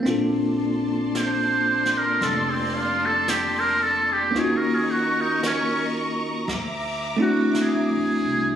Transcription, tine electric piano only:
X:1
M:4/4
L:1/8
Q:"Swing" 1/4=56
K:Bb
V:1 name="Tine electric piano"
[B,CDFA]8 | [B,_DEF_G]4 z [A,C=D=E^F]3 |]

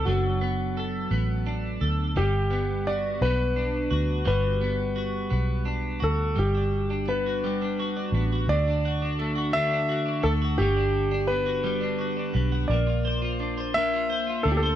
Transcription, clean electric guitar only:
X:1
M:6/8
L:1/16
Q:3/8=57
K:Glyd
V:1 name="Clean electric guitar"
[F,B,DA]2 B,2 A2 B,2 D2 A2 | G,2 B,2 F2 B,2 D2 F2 | [G,F]2 B,2 F2 B,2 D2 F2 | G, D2 D B, F G, D F D B, F |
D, D F D A, F D, D F D A, F | G, D2 D B, F G, D F D B, F | _B, =F =c F D c B, F c F D c |]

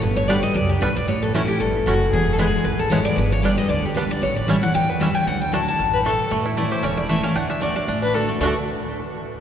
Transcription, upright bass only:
X:1
M:4/4
L:1/8
Q:"Swing" 1/4=229
K:D
V:1 name="Upright bass" clef=bass
G,,,4 C,,2 B,,,2 | A,,,4 G,,,2 F,,,2 | E,,,4 A,,,2 ^G,,,2 | G,,,4 D,,4 |
A,,,4 E,,4 | D,,4 A,,,4 | A,,,4 E,,,4 | D,,4 A,,,4 |
D,, z6 z |]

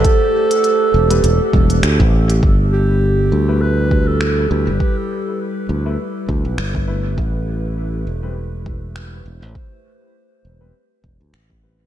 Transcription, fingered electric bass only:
X:1
M:4/4
L:1/16
Q:"Swing 16ths" 1/4=101
K:Gmix
V:1 name="Fingered electric bass" clef=bass
z6 E,,,2 E,,, z E,,,2 D,, A,,,3 | G,,,6 D,,8 D,, G,,, | z6 D,,2 z2 D,, B,,, G,,,4 | A,,,6 E,,,8 E,,, A,,, |
z6 E,,,2 z2 E,,, D,, A,,,4 |]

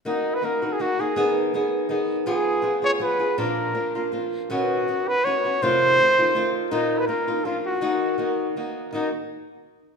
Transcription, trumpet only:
X:1
M:3/4
L:1/16
Q:"Swing" 1/4=162
K:Ebm
V:1 name="Trumpet"
E3 c B3 A G2 A2- | A2 z8 z2 | A6 d2 c4 | B8 z4 |
^F6 =B2 ^c4 | =c8- c2 z2 | E3 c B4 F z G2- | G8 z4 |
E2 z8 z2 |]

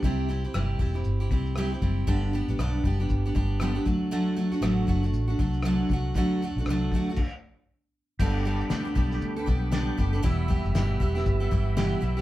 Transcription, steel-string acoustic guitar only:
X:1
M:4/4
L:1/16
Q:"Swing 16ths" 1/4=118
K:G
V:1 name="Steel-string acoustic guitar"
[C,G,CEG]2 [G,CEG] [CEG] [C,G,CEG]2 [G,CEG] [CEG]2 [CEG] [G,CEG]2 [C,G,CEG] [CEG] [G,CEG]2 | [G,,D,G,B,DG]2 [G,B,DG] [G,B,DG] [G,,D,G,B,DG]2 [G,B,DG] [G,B,DG]2 [G,B,DG] [G,B,DG]2 [G,,D,G,B,DG] [G,B,DG] [F,A,DF]2 | [D,F,A,DF]2 [F,A,DF] [A,DF] [D,F,A,DF]2 [F,A,DF] [A,DF]2 [A,DF] [F,A,DF]2 [D,F,A,DF]2 [F,A,DF]2 | [D,F,A,DF]2 [F,A,DF] [A,DF] [D,F,A,DF]2 [F,A,DF] [A,DF] z8 |
[G,B,DA]2 [G,B,DA]2 [G,B,DA] [B,DA] [G,B,DA]3 [B,DA] [G,B,DA]2 [G,B,DA]2 [G,B,DA] [B,DA] | [E,,B,,E,G,B,G]2 [E,G,B,G]2 [E,,B,,E,G,B,G]2 [E,G,B,G] [E,G,B,G]2 [E,G,B,G] [E,G,B,G]2 [E,,B,,E,G,B,G]2 [E,G,B,G] [G,B,G] |]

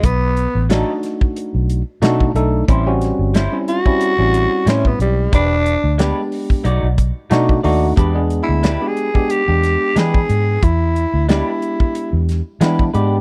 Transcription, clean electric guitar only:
X:1
M:4/4
L:1/8
Q:"Swing 16ths" 1/4=91
K:Bdor
V:1 name="Clean electric guitar"
z2 [F,D^DA] z3 [F,=D^DA] z | [=G,CE^B] z [G,CEB] z3 [G,CEB] z | [G,D=GB] z [^G,D=GB] z [A,^DF=d] z [A,^DF=d] [^DF=d] | [G,D=GB] z [^G,D=GB] z3 [^G,D=GB] z |
z2 [G,D=GB] z3 [^G,D=GB] [DGB] |]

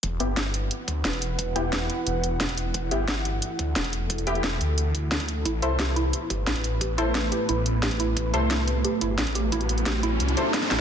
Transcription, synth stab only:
X:1
M:4/4
L:1/8
Q:1/4=177
K:Em
V:1 name="Synth stab"
z [B,EG] z6 | z [B,EG] z6 | z [B,EG] z6 | z [B,EG] z6 |
z [EAc] z6 | z [EAc] z6 | z [EAc] z6 | z4 z [EAc] z2 |]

